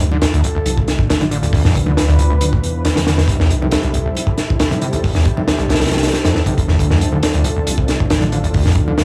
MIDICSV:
0, 0, Header, 1, 5, 480
1, 0, Start_track
1, 0, Tempo, 437956
1, 1680, Time_signature, 4, 2, 24, 8
1, 9908, End_track
2, 0, Start_track
2, 0, Title_t, "Analog synth pad"
2, 0, Program_c, 0, 89
2, 0, Note_on_c, 0, 60, 77
2, 0, Note_on_c, 0, 62, 78
2, 0, Note_on_c, 0, 65, 81
2, 0, Note_on_c, 0, 69, 94
2, 1663, Note_off_c, 0, 69, 0
2, 1681, Note_on_c, 0, 71, 89
2, 3563, Note_off_c, 0, 65, 0
2, 3564, Note_off_c, 0, 62, 0
2, 3582, Note_off_c, 0, 71, 0
2, 3603, Note_on_c, 0, 69, 96
2, 3604, Note_on_c, 0, 64, 73
2, 3606, Note_on_c, 0, 55, 82
2, 7404, Note_off_c, 0, 64, 0
2, 7405, Note_off_c, 0, 55, 0
2, 7443, Note_on_c, 0, 62, 76
2, 7443, Note_on_c, 0, 65, 83
2, 9908, Note_off_c, 0, 60, 0
2, 9908, Note_off_c, 0, 62, 0
2, 9908, Note_off_c, 0, 65, 0
2, 9908, Note_off_c, 0, 69, 0
2, 9908, End_track
3, 0, Start_track
3, 0, Title_t, "Acid bass"
3, 0, Program_c, 1, 38
3, 4, Note_on_c, 1, 45, 75
3, 43, Note_off_c, 1, 45, 0
3, 129, Note_on_c, 1, 50, 75
3, 190, Note_off_c, 1, 50, 0
3, 245, Note_on_c, 1, 38, 87
3, 284, Note_off_c, 1, 38, 0
3, 367, Note_on_c, 1, 38, 104
3, 461, Note_off_c, 1, 38, 0
3, 481, Note_on_c, 1, 36, 98
3, 522, Note_off_c, 1, 36, 0
3, 605, Note_on_c, 1, 38, 78
3, 643, Note_off_c, 1, 38, 0
3, 1200, Note_on_c, 1, 38, 83
3, 1242, Note_off_c, 1, 38, 0
3, 1323, Note_on_c, 1, 50, 100
3, 1362, Note_off_c, 1, 50, 0
3, 1439, Note_on_c, 1, 50, 75
3, 1509, Note_off_c, 1, 50, 0
3, 1561, Note_on_c, 1, 38, 78
3, 1601, Note_off_c, 1, 38, 0
3, 1681, Note_on_c, 1, 38, 83
3, 1783, Note_off_c, 1, 38, 0
3, 1802, Note_on_c, 1, 41, 98
3, 1919, Note_on_c, 1, 45, 76
3, 1935, Note_off_c, 1, 41, 0
3, 1961, Note_off_c, 1, 45, 0
3, 2044, Note_on_c, 1, 50, 77
3, 2108, Note_off_c, 1, 50, 0
3, 2161, Note_on_c, 1, 38, 86
3, 2202, Note_off_c, 1, 38, 0
3, 2286, Note_on_c, 1, 38, 100
3, 2381, Note_off_c, 1, 38, 0
3, 2399, Note_on_c, 1, 36, 99
3, 2441, Note_off_c, 1, 36, 0
3, 2525, Note_on_c, 1, 38, 76
3, 2563, Note_off_c, 1, 38, 0
3, 3120, Note_on_c, 1, 38, 86
3, 3162, Note_off_c, 1, 38, 0
3, 3245, Note_on_c, 1, 50, 97
3, 3283, Note_off_c, 1, 50, 0
3, 3362, Note_on_c, 1, 50, 76
3, 3430, Note_off_c, 1, 50, 0
3, 3486, Note_on_c, 1, 38, 76
3, 3524, Note_off_c, 1, 38, 0
3, 3601, Note_on_c, 1, 36, 82
3, 3704, Note_off_c, 1, 36, 0
3, 3723, Note_on_c, 1, 40, 100
3, 3842, Note_on_c, 1, 43, 76
3, 3859, Note_off_c, 1, 40, 0
3, 3883, Note_off_c, 1, 43, 0
3, 3967, Note_on_c, 1, 48, 76
3, 4029, Note_off_c, 1, 48, 0
3, 4080, Note_on_c, 1, 36, 82
3, 4122, Note_off_c, 1, 36, 0
3, 4205, Note_on_c, 1, 36, 100
3, 4300, Note_off_c, 1, 36, 0
3, 4319, Note_on_c, 1, 35, 97
3, 4361, Note_off_c, 1, 35, 0
3, 4446, Note_on_c, 1, 36, 76
3, 4484, Note_off_c, 1, 36, 0
3, 5041, Note_on_c, 1, 36, 81
3, 5082, Note_off_c, 1, 36, 0
3, 5164, Note_on_c, 1, 48, 95
3, 5203, Note_off_c, 1, 48, 0
3, 5281, Note_on_c, 1, 48, 76
3, 5349, Note_off_c, 1, 48, 0
3, 5404, Note_on_c, 1, 36, 78
3, 5443, Note_off_c, 1, 36, 0
3, 5520, Note_on_c, 1, 36, 84
3, 5623, Note_off_c, 1, 36, 0
3, 5644, Note_on_c, 1, 40, 97
3, 5759, Note_on_c, 1, 43, 81
3, 5775, Note_off_c, 1, 40, 0
3, 5801, Note_off_c, 1, 43, 0
3, 5883, Note_on_c, 1, 48, 75
3, 5948, Note_off_c, 1, 48, 0
3, 5998, Note_on_c, 1, 36, 82
3, 6041, Note_off_c, 1, 36, 0
3, 6123, Note_on_c, 1, 36, 100
3, 6219, Note_off_c, 1, 36, 0
3, 6239, Note_on_c, 1, 35, 96
3, 6281, Note_off_c, 1, 35, 0
3, 6365, Note_on_c, 1, 36, 79
3, 6403, Note_off_c, 1, 36, 0
3, 6847, Note_on_c, 1, 41, 79
3, 6941, Note_off_c, 1, 41, 0
3, 6963, Note_on_c, 1, 40, 80
3, 7030, Note_off_c, 1, 40, 0
3, 7087, Note_on_c, 1, 48, 97
3, 7181, Note_off_c, 1, 48, 0
3, 7203, Note_on_c, 1, 36, 106
3, 7270, Note_off_c, 1, 36, 0
3, 7327, Note_on_c, 1, 40, 98
3, 7421, Note_off_c, 1, 40, 0
3, 7445, Note_on_c, 1, 38, 86
3, 7546, Note_off_c, 1, 38, 0
3, 7569, Note_on_c, 1, 41, 97
3, 7689, Note_on_c, 1, 45, 77
3, 7705, Note_off_c, 1, 41, 0
3, 7726, Note_off_c, 1, 45, 0
3, 7810, Note_on_c, 1, 50, 73
3, 7871, Note_off_c, 1, 50, 0
3, 7922, Note_on_c, 1, 38, 84
3, 7963, Note_off_c, 1, 38, 0
3, 8047, Note_on_c, 1, 38, 100
3, 8141, Note_off_c, 1, 38, 0
3, 8162, Note_on_c, 1, 36, 101
3, 8202, Note_off_c, 1, 36, 0
3, 8288, Note_on_c, 1, 38, 75
3, 8325, Note_off_c, 1, 38, 0
3, 8885, Note_on_c, 1, 38, 83
3, 8924, Note_off_c, 1, 38, 0
3, 9007, Note_on_c, 1, 50, 99
3, 9044, Note_off_c, 1, 50, 0
3, 9123, Note_on_c, 1, 50, 78
3, 9190, Note_off_c, 1, 50, 0
3, 9246, Note_on_c, 1, 38, 80
3, 9284, Note_off_c, 1, 38, 0
3, 9365, Note_on_c, 1, 38, 82
3, 9465, Note_off_c, 1, 38, 0
3, 9488, Note_on_c, 1, 41, 98
3, 9603, Note_on_c, 1, 45, 74
3, 9619, Note_off_c, 1, 41, 0
3, 9643, Note_off_c, 1, 45, 0
3, 9727, Note_on_c, 1, 50, 77
3, 9790, Note_off_c, 1, 50, 0
3, 9842, Note_on_c, 1, 38, 84
3, 9882, Note_off_c, 1, 38, 0
3, 9908, End_track
4, 0, Start_track
4, 0, Title_t, "Detuned saw bass"
4, 0, Program_c, 2, 39
4, 0, Note_on_c, 2, 38, 102
4, 198, Note_off_c, 2, 38, 0
4, 721, Note_on_c, 2, 36, 98
4, 1038, Note_off_c, 2, 36, 0
4, 1083, Note_on_c, 2, 33, 94
4, 1875, Note_off_c, 2, 33, 0
4, 1924, Note_on_c, 2, 38, 99
4, 2358, Note_off_c, 2, 38, 0
4, 2402, Note_on_c, 2, 38, 79
4, 2837, Note_off_c, 2, 38, 0
4, 2883, Note_on_c, 2, 40, 82
4, 3558, Note_off_c, 2, 40, 0
4, 3593, Note_on_c, 2, 36, 97
4, 4033, Note_off_c, 2, 36, 0
4, 6243, Note_on_c, 2, 36, 80
4, 6678, Note_off_c, 2, 36, 0
4, 7210, Note_on_c, 2, 31, 102
4, 7390, Note_off_c, 2, 31, 0
4, 7446, Note_on_c, 2, 38, 98
4, 7879, Note_off_c, 2, 38, 0
4, 8405, Note_on_c, 2, 36, 93
4, 8720, Note_off_c, 2, 36, 0
4, 8772, Note_on_c, 2, 33, 97
4, 9560, Note_off_c, 2, 33, 0
4, 9598, Note_on_c, 2, 38, 98
4, 9908, Note_off_c, 2, 38, 0
4, 9908, End_track
5, 0, Start_track
5, 0, Title_t, "Drums"
5, 126, Note_on_c, 9, 63, 83
5, 236, Note_off_c, 9, 63, 0
5, 237, Note_on_c, 9, 42, 85
5, 239, Note_on_c, 9, 38, 105
5, 346, Note_off_c, 9, 42, 0
5, 349, Note_off_c, 9, 38, 0
5, 371, Note_on_c, 9, 42, 43
5, 480, Note_off_c, 9, 42, 0
5, 481, Note_on_c, 9, 42, 63
5, 590, Note_off_c, 9, 42, 0
5, 720, Note_on_c, 9, 42, 77
5, 724, Note_on_c, 9, 63, 66
5, 830, Note_off_c, 9, 42, 0
5, 833, Note_off_c, 9, 63, 0
5, 850, Note_on_c, 9, 36, 88
5, 959, Note_off_c, 9, 36, 0
5, 960, Note_on_c, 9, 42, 62
5, 965, Note_on_c, 9, 38, 49
5, 1070, Note_off_c, 9, 42, 0
5, 1075, Note_off_c, 9, 38, 0
5, 1083, Note_on_c, 9, 36, 86
5, 1192, Note_off_c, 9, 36, 0
5, 1205, Note_on_c, 9, 42, 79
5, 1208, Note_on_c, 9, 38, 116
5, 1315, Note_off_c, 9, 42, 0
5, 1318, Note_off_c, 9, 38, 0
5, 1325, Note_on_c, 9, 42, 39
5, 1326, Note_on_c, 9, 63, 91
5, 1435, Note_off_c, 9, 42, 0
5, 1436, Note_off_c, 9, 63, 0
5, 1440, Note_on_c, 9, 42, 62
5, 1549, Note_off_c, 9, 42, 0
5, 1566, Note_on_c, 9, 64, 78
5, 1567, Note_on_c, 9, 42, 45
5, 1675, Note_off_c, 9, 64, 0
5, 1676, Note_off_c, 9, 42, 0
5, 1676, Note_on_c, 9, 36, 106
5, 1690, Note_on_c, 9, 46, 75
5, 1785, Note_off_c, 9, 36, 0
5, 1799, Note_off_c, 9, 46, 0
5, 1806, Note_on_c, 9, 38, 42
5, 1916, Note_off_c, 9, 38, 0
5, 1923, Note_on_c, 9, 36, 97
5, 1926, Note_on_c, 9, 42, 71
5, 2032, Note_off_c, 9, 36, 0
5, 2036, Note_off_c, 9, 42, 0
5, 2040, Note_on_c, 9, 63, 98
5, 2150, Note_off_c, 9, 63, 0
5, 2161, Note_on_c, 9, 38, 113
5, 2166, Note_on_c, 9, 42, 86
5, 2271, Note_off_c, 9, 38, 0
5, 2275, Note_off_c, 9, 42, 0
5, 2295, Note_on_c, 9, 42, 38
5, 2397, Note_off_c, 9, 42, 0
5, 2397, Note_on_c, 9, 42, 60
5, 2507, Note_off_c, 9, 42, 0
5, 2525, Note_on_c, 9, 64, 76
5, 2635, Note_off_c, 9, 64, 0
5, 2640, Note_on_c, 9, 42, 93
5, 2644, Note_on_c, 9, 63, 63
5, 2749, Note_off_c, 9, 42, 0
5, 2754, Note_off_c, 9, 63, 0
5, 2772, Note_on_c, 9, 36, 97
5, 2881, Note_off_c, 9, 36, 0
5, 2888, Note_on_c, 9, 42, 64
5, 2997, Note_off_c, 9, 42, 0
5, 3120, Note_on_c, 9, 42, 79
5, 3128, Note_on_c, 9, 38, 105
5, 3230, Note_off_c, 9, 42, 0
5, 3238, Note_off_c, 9, 38, 0
5, 3239, Note_on_c, 9, 63, 89
5, 3248, Note_on_c, 9, 38, 104
5, 3252, Note_on_c, 9, 42, 82
5, 3349, Note_off_c, 9, 63, 0
5, 3358, Note_off_c, 9, 38, 0
5, 3361, Note_off_c, 9, 42, 0
5, 3362, Note_on_c, 9, 38, 101
5, 3369, Note_on_c, 9, 42, 68
5, 3471, Note_off_c, 9, 38, 0
5, 3478, Note_off_c, 9, 42, 0
5, 3486, Note_on_c, 9, 38, 105
5, 3490, Note_on_c, 9, 42, 76
5, 3592, Note_on_c, 9, 36, 111
5, 3595, Note_off_c, 9, 38, 0
5, 3598, Note_off_c, 9, 42, 0
5, 3598, Note_on_c, 9, 42, 85
5, 3702, Note_off_c, 9, 36, 0
5, 3707, Note_off_c, 9, 42, 0
5, 3727, Note_on_c, 9, 38, 54
5, 3837, Note_off_c, 9, 38, 0
5, 3840, Note_on_c, 9, 42, 64
5, 3950, Note_off_c, 9, 42, 0
5, 3971, Note_on_c, 9, 63, 95
5, 4070, Note_on_c, 9, 42, 93
5, 4081, Note_off_c, 9, 63, 0
5, 4081, Note_on_c, 9, 38, 103
5, 4180, Note_off_c, 9, 42, 0
5, 4191, Note_off_c, 9, 38, 0
5, 4195, Note_on_c, 9, 42, 38
5, 4305, Note_off_c, 9, 42, 0
5, 4316, Note_on_c, 9, 42, 69
5, 4426, Note_off_c, 9, 42, 0
5, 4551, Note_on_c, 9, 63, 65
5, 4565, Note_on_c, 9, 42, 79
5, 4660, Note_off_c, 9, 63, 0
5, 4675, Note_off_c, 9, 42, 0
5, 4678, Note_on_c, 9, 36, 82
5, 4788, Note_off_c, 9, 36, 0
5, 4796, Note_on_c, 9, 38, 50
5, 4796, Note_on_c, 9, 42, 61
5, 4905, Note_off_c, 9, 42, 0
5, 4906, Note_off_c, 9, 38, 0
5, 4935, Note_on_c, 9, 36, 97
5, 5036, Note_on_c, 9, 42, 82
5, 5041, Note_on_c, 9, 38, 111
5, 5044, Note_off_c, 9, 36, 0
5, 5146, Note_off_c, 9, 42, 0
5, 5150, Note_off_c, 9, 38, 0
5, 5164, Note_on_c, 9, 63, 102
5, 5170, Note_on_c, 9, 42, 45
5, 5274, Note_off_c, 9, 63, 0
5, 5277, Note_off_c, 9, 42, 0
5, 5277, Note_on_c, 9, 42, 60
5, 5387, Note_off_c, 9, 42, 0
5, 5400, Note_on_c, 9, 42, 45
5, 5412, Note_on_c, 9, 64, 85
5, 5509, Note_off_c, 9, 42, 0
5, 5521, Note_off_c, 9, 64, 0
5, 5521, Note_on_c, 9, 46, 77
5, 5525, Note_on_c, 9, 36, 110
5, 5631, Note_off_c, 9, 46, 0
5, 5635, Note_off_c, 9, 36, 0
5, 5643, Note_on_c, 9, 38, 47
5, 5752, Note_off_c, 9, 38, 0
5, 5755, Note_on_c, 9, 42, 73
5, 5762, Note_on_c, 9, 36, 100
5, 5865, Note_off_c, 9, 42, 0
5, 5871, Note_off_c, 9, 36, 0
5, 5888, Note_on_c, 9, 63, 98
5, 5998, Note_off_c, 9, 63, 0
5, 6002, Note_on_c, 9, 38, 117
5, 6004, Note_on_c, 9, 42, 80
5, 6112, Note_off_c, 9, 38, 0
5, 6114, Note_off_c, 9, 42, 0
5, 6128, Note_on_c, 9, 42, 40
5, 6238, Note_off_c, 9, 42, 0
5, 6244, Note_on_c, 9, 42, 66
5, 6251, Note_on_c, 9, 38, 78
5, 6298, Note_off_c, 9, 38, 0
5, 6298, Note_on_c, 9, 38, 85
5, 6309, Note_off_c, 9, 42, 0
5, 6309, Note_on_c, 9, 42, 63
5, 6358, Note_off_c, 9, 38, 0
5, 6358, Note_on_c, 9, 38, 88
5, 6369, Note_off_c, 9, 42, 0
5, 6369, Note_on_c, 9, 42, 71
5, 6370, Note_on_c, 9, 64, 65
5, 6424, Note_off_c, 9, 42, 0
5, 6424, Note_on_c, 9, 42, 64
5, 6429, Note_off_c, 9, 38, 0
5, 6429, Note_on_c, 9, 38, 87
5, 6478, Note_off_c, 9, 42, 0
5, 6478, Note_on_c, 9, 42, 62
5, 6480, Note_off_c, 9, 64, 0
5, 6483, Note_on_c, 9, 63, 72
5, 6489, Note_off_c, 9, 38, 0
5, 6489, Note_on_c, 9, 38, 85
5, 6545, Note_off_c, 9, 38, 0
5, 6545, Note_on_c, 9, 38, 86
5, 6550, Note_off_c, 9, 42, 0
5, 6550, Note_on_c, 9, 42, 64
5, 6593, Note_off_c, 9, 63, 0
5, 6606, Note_off_c, 9, 42, 0
5, 6606, Note_on_c, 9, 42, 68
5, 6610, Note_off_c, 9, 38, 0
5, 6610, Note_on_c, 9, 38, 77
5, 6656, Note_off_c, 9, 38, 0
5, 6656, Note_on_c, 9, 38, 85
5, 6660, Note_off_c, 9, 42, 0
5, 6660, Note_on_c, 9, 42, 69
5, 6724, Note_off_c, 9, 38, 0
5, 6724, Note_off_c, 9, 42, 0
5, 6724, Note_on_c, 9, 38, 97
5, 6724, Note_on_c, 9, 42, 80
5, 6833, Note_off_c, 9, 38, 0
5, 6833, Note_off_c, 9, 42, 0
5, 6846, Note_on_c, 9, 38, 101
5, 6846, Note_on_c, 9, 42, 81
5, 6956, Note_off_c, 9, 38, 0
5, 6956, Note_off_c, 9, 42, 0
5, 6961, Note_on_c, 9, 38, 54
5, 7070, Note_off_c, 9, 38, 0
5, 7082, Note_on_c, 9, 36, 78
5, 7083, Note_on_c, 9, 42, 61
5, 7090, Note_on_c, 9, 63, 92
5, 7191, Note_off_c, 9, 36, 0
5, 7193, Note_off_c, 9, 42, 0
5, 7200, Note_off_c, 9, 63, 0
5, 7209, Note_on_c, 9, 36, 90
5, 7209, Note_on_c, 9, 42, 59
5, 7319, Note_off_c, 9, 36, 0
5, 7319, Note_off_c, 9, 42, 0
5, 7323, Note_on_c, 9, 38, 36
5, 7433, Note_off_c, 9, 38, 0
5, 7445, Note_on_c, 9, 36, 99
5, 7449, Note_on_c, 9, 42, 82
5, 7555, Note_off_c, 9, 36, 0
5, 7559, Note_off_c, 9, 42, 0
5, 7567, Note_on_c, 9, 38, 56
5, 7677, Note_off_c, 9, 38, 0
5, 7684, Note_on_c, 9, 42, 64
5, 7794, Note_off_c, 9, 42, 0
5, 7803, Note_on_c, 9, 63, 83
5, 7913, Note_off_c, 9, 63, 0
5, 7920, Note_on_c, 9, 42, 92
5, 7928, Note_on_c, 9, 38, 107
5, 8030, Note_off_c, 9, 42, 0
5, 8037, Note_off_c, 9, 38, 0
5, 8039, Note_on_c, 9, 42, 45
5, 8149, Note_off_c, 9, 42, 0
5, 8156, Note_on_c, 9, 42, 71
5, 8266, Note_off_c, 9, 42, 0
5, 8404, Note_on_c, 9, 42, 86
5, 8404, Note_on_c, 9, 63, 55
5, 8513, Note_off_c, 9, 63, 0
5, 8514, Note_off_c, 9, 42, 0
5, 8525, Note_on_c, 9, 36, 88
5, 8635, Note_off_c, 9, 36, 0
5, 8636, Note_on_c, 9, 42, 62
5, 8647, Note_on_c, 9, 38, 52
5, 8745, Note_off_c, 9, 42, 0
5, 8757, Note_off_c, 9, 38, 0
5, 8772, Note_on_c, 9, 36, 87
5, 8879, Note_on_c, 9, 42, 81
5, 8881, Note_off_c, 9, 36, 0
5, 8883, Note_on_c, 9, 38, 124
5, 8988, Note_off_c, 9, 42, 0
5, 8993, Note_off_c, 9, 38, 0
5, 8996, Note_on_c, 9, 63, 99
5, 9006, Note_on_c, 9, 42, 40
5, 9106, Note_off_c, 9, 63, 0
5, 9116, Note_off_c, 9, 42, 0
5, 9121, Note_on_c, 9, 42, 64
5, 9230, Note_off_c, 9, 42, 0
5, 9242, Note_on_c, 9, 64, 72
5, 9249, Note_on_c, 9, 42, 42
5, 9352, Note_off_c, 9, 64, 0
5, 9358, Note_on_c, 9, 46, 80
5, 9359, Note_off_c, 9, 42, 0
5, 9366, Note_on_c, 9, 36, 97
5, 9468, Note_off_c, 9, 46, 0
5, 9475, Note_off_c, 9, 36, 0
5, 9489, Note_on_c, 9, 38, 45
5, 9591, Note_on_c, 9, 42, 71
5, 9597, Note_on_c, 9, 36, 95
5, 9598, Note_off_c, 9, 38, 0
5, 9700, Note_off_c, 9, 42, 0
5, 9707, Note_off_c, 9, 36, 0
5, 9729, Note_on_c, 9, 63, 80
5, 9839, Note_off_c, 9, 63, 0
5, 9839, Note_on_c, 9, 38, 112
5, 9844, Note_on_c, 9, 42, 86
5, 9908, Note_off_c, 9, 38, 0
5, 9908, Note_off_c, 9, 42, 0
5, 9908, End_track
0, 0, End_of_file